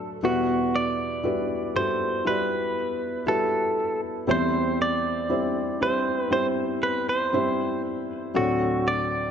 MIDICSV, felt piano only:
0, 0, Header, 1, 2, 480
1, 0, Start_track
1, 0, Key_signature, 1, "minor"
1, 0, Tempo, 1016949
1, 104, Time_signature, 4, 2, 24, 8
1, 4394, End_track
2, 0, Start_track
2, 0, Title_t, "Felt piano"
2, 0, Program_c, 0, 0
2, 0, Control_c, 0, 64, 127
2, 0, Note_on_c, 0, 38, 52
2, 0, Note_on_c, 0, 45, 45
2, 0, Note_on_c, 0, 54, 61
2, 0, Note_on_c, 0, 57, 55
2, 0, Note_on_c, 0, 62, 53
2, 0, Note_on_c, 0, 69, 67
2, 0, Note_on_c, 0, 71, 74
2, 81, Note_off_c, 0, 54, 0
2, 82, Note_off_c, 0, 57, 0
2, 83, Note_off_c, 0, 62, 0
2, 85, Note_off_c, 0, 69, 0
2, 87, Note_off_c, 0, 38, 0
2, 87, Note_off_c, 0, 45, 0
2, 107, Note_on_c, 0, 55, 74
2, 111, Control_c, 0, 64, 0
2, 111, Note_on_c, 0, 40, 53
2, 111, Note_on_c, 0, 47, 50
2, 111, Note_on_c, 0, 64, 63
2, 113, Note_on_c, 0, 66, 75
2, 115, Note_off_c, 0, 71, 0
2, 115, Note_on_c, 0, 71, 85
2, 190, Control_c, 0, 64, 127
2, 562, Note_off_c, 0, 55, 0
2, 564, Note_off_c, 0, 64, 0
2, 565, Note_off_c, 0, 66, 0
2, 566, Note_off_c, 0, 71, 0
2, 584, Note_on_c, 0, 55, 58
2, 584, Note_on_c, 0, 64, 51
2, 589, Note_on_c, 0, 66, 56
2, 590, Note_on_c, 0, 71, 65
2, 812, Note_off_c, 0, 55, 0
2, 812, Note_off_c, 0, 64, 0
2, 815, Note_off_c, 0, 66, 0
2, 815, Note_off_c, 0, 71, 0
2, 825, Note_on_c, 0, 55, 53
2, 828, Note_on_c, 0, 64, 49
2, 831, Note_on_c, 0, 66, 53
2, 831, Note_on_c, 0, 69, 62
2, 1053, Note_off_c, 0, 55, 0
2, 1054, Note_off_c, 0, 64, 0
2, 1056, Note_off_c, 0, 66, 0
2, 1056, Note_off_c, 0, 69, 0
2, 1061, Note_on_c, 0, 55, 66
2, 1064, Note_on_c, 0, 64, 55
2, 1066, Note_on_c, 0, 66, 57
2, 1069, Note_on_c, 0, 74, 71
2, 1519, Note_off_c, 0, 55, 0
2, 1520, Note_off_c, 0, 64, 0
2, 1521, Note_off_c, 0, 66, 0
2, 1523, Note_off_c, 0, 74, 0
2, 1540, Note_on_c, 0, 55, 64
2, 1541, Note_on_c, 0, 64, 62
2, 1545, Note_on_c, 0, 66, 58
2, 1548, Note_on_c, 0, 71, 69
2, 1998, Note_off_c, 0, 55, 0
2, 1999, Note_off_c, 0, 64, 0
2, 2001, Note_off_c, 0, 66, 0
2, 2002, Note_off_c, 0, 71, 0
2, 2009, Note_off_c, 0, 40, 0
2, 2009, Note_off_c, 0, 47, 0
2, 2017, Note_on_c, 0, 55, 76
2, 2017, Note_on_c, 0, 60, 72
2, 2019, Note_on_c, 0, 40, 53
2, 2020, Note_on_c, 0, 64, 72
2, 2021, Note_on_c, 0, 52, 55
2, 2024, Note_on_c, 0, 72, 92
2, 2031, Control_c, 0, 64, 0
2, 2105, Control_c, 0, 64, 127
2, 2477, Note_off_c, 0, 55, 0
2, 2477, Note_off_c, 0, 60, 0
2, 2478, Note_off_c, 0, 64, 0
2, 2480, Note_off_c, 0, 72, 0
2, 2498, Note_on_c, 0, 55, 58
2, 2499, Note_on_c, 0, 60, 58
2, 2501, Note_on_c, 0, 64, 62
2, 2505, Note_on_c, 0, 72, 63
2, 2729, Note_off_c, 0, 55, 0
2, 2730, Note_off_c, 0, 60, 0
2, 2731, Note_off_c, 0, 64, 0
2, 2733, Note_off_c, 0, 72, 0
2, 2740, Note_on_c, 0, 55, 60
2, 2742, Note_on_c, 0, 60, 59
2, 2744, Note_on_c, 0, 64, 54
2, 2748, Note_on_c, 0, 72, 61
2, 2969, Note_off_c, 0, 55, 0
2, 2971, Note_off_c, 0, 60, 0
2, 2972, Note_off_c, 0, 64, 0
2, 2974, Note_off_c, 0, 72, 0
2, 2976, Note_on_c, 0, 55, 71
2, 2979, Note_on_c, 0, 60, 63
2, 2981, Note_on_c, 0, 64, 63
2, 2985, Note_on_c, 0, 72, 78
2, 3436, Note_off_c, 0, 55, 0
2, 3438, Note_off_c, 0, 60, 0
2, 3439, Note_off_c, 0, 64, 0
2, 3441, Note_off_c, 0, 72, 0
2, 3459, Note_on_c, 0, 55, 66
2, 3461, Note_on_c, 0, 60, 58
2, 3465, Note_on_c, 0, 64, 65
2, 3465, Note_on_c, 0, 72, 78
2, 3918, Note_off_c, 0, 55, 0
2, 3919, Note_off_c, 0, 60, 0
2, 3921, Note_off_c, 0, 64, 0
2, 3921, Note_off_c, 0, 72, 0
2, 3923, Note_off_c, 0, 40, 0
2, 3924, Note_off_c, 0, 52, 0
2, 3938, Note_on_c, 0, 54, 81
2, 3940, Note_on_c, 0, 60, 78
2, 3943, Note_on_c, 0, 38, 57
2, 3943, Note_on_c, 0, 45, 55
2, 3945, Note_on_c, 0, 62, 74
2, 3946, Note_on_c, 0, 69, 85
2, 3950, Control_c, 0, 64, 0
2, 4040, Control_c, 0, 64, 127
2, 4394, Note_off_c, 0, 38, 0
2, 4394, Note_off_c, 0, 45, 0
2, 4394, Note_off_c, 0, 54, 0
2, 4394, Note_off_c, 0, 60, 0
2, 4394, Note_off_c, 0, 62, 0
2, 4394, Note_off_c, 0, 69, 0
2, 4394, End_track
0, 0, End_of_file